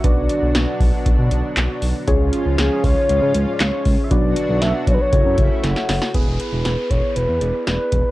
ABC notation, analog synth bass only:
X:1
M:4/4
L:1/16
Q:1/4=118
K:Emix
V:1 name="Analog synth bass" clef=bass
B,,, B,,, z B,,, B,,, z B,,, z B,,, B,, B,,, z B,,, z B,,, z | C,, C,, z C,, C,, z C,, z C,, C, C,, z C,, z C,, z | B,,, B,,, z B,,, B,,, z B,,, z F,,, F,, F,,, z F,,, z F,,, z | E,,, E,,, z E,,, E,,, z E,,, z E,,, E,, E,,, z E,,, z E,,, z |]